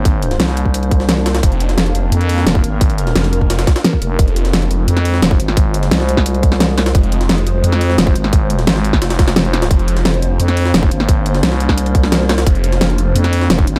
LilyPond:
<<
  \new Staff \with { instrumentName = "Synth drone" } { \time 4/4 \key bes \mixolydian \tempo 4 = 174 << { c''1 | bes'1~ | bes'1 | c''1~ |
c''1~ | c''1~ | c''1~ | c''1~ |
c''1~ | c''1 | } \\ { <bes d'>1~ | <bes d'>1~ | <bes d'>1 | <aes f'>1~ |
<aes f'>1~ | <aes f'>1~ | <aes f'>1 | <bes d'>1~ |
<bes d'>1~ | <bes d'>1 | } >> }
  \new Staff \with { instrumentName = "FM bass" } { \clef bass \time 4/4 \key bes \mixolydian aes,,4 c,2. | r2 f,4 f,,8 aes,,8~ | aes,,4 r2 r8 f,,8 | r2 f,4 f,,8 aes,,8~ |
aes,,4 c,2. | r2 f,4 f,,8 aes,,8~ | aes,,4 aes,,4 f,,4 f,,4 | r2 f,4 f,,8 aes,,8~ |
aes,,4 c,2. | r2 f,4 f,,8 aes,,8 | }
  \new Staff \with { instrumentName = "Detuned saw bass" } { \clef bass \time 4/4 \key bes \mixolydian r1 | f,,4. f,,8 r2 | r4 f,,4. r4. | f,,4. f,,8 r2 |
r1 | f,,4. f,,8 r2 | r1 | f,,4. f,,8 r2 |
r1 | f,,4. f,,8 r2 | }
  \new DrumStaff \with { instrumentName = "Drums" } \drummode { \time 4/4 <hh bd>8 hh16 <hh sn>16 <hh sn>16 sn16 hh16 bd16 hh16 hh16 <hh bd>16 sn16 <hh sn>16 sn16 <hh sn>16 <hh sn>16 | <hh bd>16 hh16 hh16 <hh sn>16 <hh sn>16 hh16 hh8 hh16 hh16 <hh hho>16 sn16 <hh sn>16 bd16 hh8 | <hh bd>16 hh16 hh16 <hh sn>16 <hh sn>16 <hh sn>16 hh16 bd16 <hh sn>16 <hh sn>16 <hh bd sn>16 <hh sn>16 <hh sn>16 bd16 hh8 | <hh bd>16 hh16 hh16 <hh sn>16 <hh sn>16 hh16 hh8 hh16 <hh sn>16 <hh hho>16 sn16 <hh sn>16 bd16 hh16 sn16 |
<hh bd>8 hh16 <hh sn>16 <hh sn>16 sn16 hh16 <bd sn>16 hh16 hh16 <hh bd>16 sn16 <hh sn>16 sn16 <hh sn>16 <hh sn>16 | <hh bd>16 hh16 hh16 <hh sn>16 <hh sn>16 hh16 hh8 hh16 <hh sn>16 <hh hho>16 sn16 <hh sn>16 bd16 hh16 sn16 | <hh bd>8 hh16 <hh sn>16 <hh sn>16 sn16 hh16 <bd sn>16 <hh sn>16 <hh sn>16 <hh bd sn>16 <hh sn>16 <hh sn>16 hh16 <hh sn>16 <hh sn>16 | <hh bd>16 hh16 hh16 <hh sn>16 <hh sn>16 hh16 hh8 hh16 <hh sn>16 <hh hho>16 sn16 <hh sn>16 bd16 hh16 sn16 |
<hh bd>8 hh16 <hh sn>16 <hh sn>16 sn16 hh16 <bd sn>16 hh16 hh16 <hh bd>16 sn16 <hh sn>16 sn16 <hh sn>16 <hh sn>16 | <hh bd>16 hh16 hh16 <hh sn>16 <hh sn>16 hh16 hh8 hh16 <hh sn>16 <hh hho>16 sn16 <hh sn>16 bd16 hh16 sn16 | }
>>